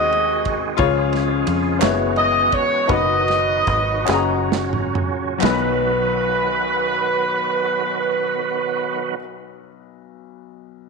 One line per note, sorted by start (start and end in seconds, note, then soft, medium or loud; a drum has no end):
0.00 0.76 D#2 loud
0.00 0.81 C3 medium
0.00 0.75 D#3 medium
0.00 1.78 G#3 medium
0.00 0.77 C4 medium
0.00 0.81 C4 medium
0.00 0.82 D#4 medium
0.00 0.76 F#4 medium
0.00 0.77 F#4 medium
0.00 0.81 F#4 medium
0.00 0.77 G#4 medium
0.00 1.78 G#4 medium
0.00 0.51 D#5 loud
0.00 0.81 D#5 medium
0.12 ride soft
0.45 kick medium
0.45 ride medium
0.77 1.43 C#2 loud
0.77 1.77 C#3 medium
0.77 1.81 C#3 medium
0.77 1.81 F3 medium
0.77 1.40 F4 loud
0.77 1.81 F4 medium
0.77 1.41 G#4 medium
0.77 1.41 C#5 loud
0.77 kick loud
0.77 ride medium
1.13 snare soft
1.13 ride soft
1.47 1.79 F2 medium
1.47 ride medium
1.79 2.49 F#1 loud
1.79 2.89 E3 medium
1.79 2.89 G#3 medium
1.79 2.46 B3 medium
1.79 2.89 B3 medium
1.79 2.89 C#4 medium
1.79 2.46 E4 medium
1.79 2.46 F#4 medium
1.79 4.06 F#4 medium
1.79 2.46 G#4 medium
1.79 2.47 C#5 loud
1.79 snare medium
1.79 clap loud
1.79 ride medium
2.16 2.51 D#5 loud
2.16 ride soft
2.52 2.91 C#5 loud
2.52 kick medium
2.52 ride medium
2.87 3.63 F#1 loud
2.87 4.07 B2 medium
2.87 4.07 D#3 soft
2.87 4.06 F#3 soft
2.87 3.59 D#4 medium
2.87 4.07 D#4 medium
2.87 3.60 F#4 medium
2.87 3.60 B4 medium
2.87 kick loud
2.87 ride medium
2.92 4.48 F#4 medium
2.92 4.47 B4 medium
2.92 4.51 D#5 loud
3.28 snare soft
3.28 ride soft
3.67 4.05 G#1 medium
3.67 kick medium
3.67 ride medium
4.05 4.91 F#1 loud
4.05 5.40 A#2 medium
4.05 5.40 C#3 medium
4.05 5.40 F#3 medium
4.05 4.86 C#4 medium
4.05 5.40 C#4 medium
4.05 4.86 F#4 medium
4.05 5.40 F#4 medium
4.05 4.15 G#4 medium
4.05 snare soft
4.05 clap loud
4.14 4.90 A#5 loud
4.52 snare medium
4.73 mid tom medium
4.95 floor tom medium
5.38 9.17 B1 medium
5.38 9.15 D#3 medium
5.38 9.13 F#3 medium
5.38 9.16 F#3 medium
5.38 9.15 B3 medium
5.38 9.16 B3 medium
5.38 9.17 D#4 medium
5.38 9.16 F#4 medium
5.38 9.14 B4 medium
5.38 clap medium
5.43 9.18 B1 loud
5.43 9.20 B4 medium
5.43 snare loud
5.43 ride bell medium